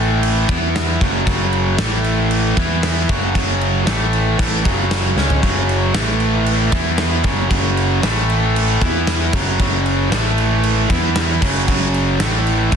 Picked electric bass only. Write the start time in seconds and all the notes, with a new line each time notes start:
Already playing: A1
0.49 E2
1.02 F#1
1.27 F#1
2.57 E2
3.09 F#1
3.86 A1
4.39 A1
4.65 F#1
5.16 C#2
5.43 F#1
5.95 A1
6.73 E2
7.24 F#1
7.51 F#1
8.03 A1
8.81 E2
9.33 F#1
9.60 F#1
10.10 A1
10.90 E2
11.42 F#1
11.68 F#1
12.20 A1
12.72 A1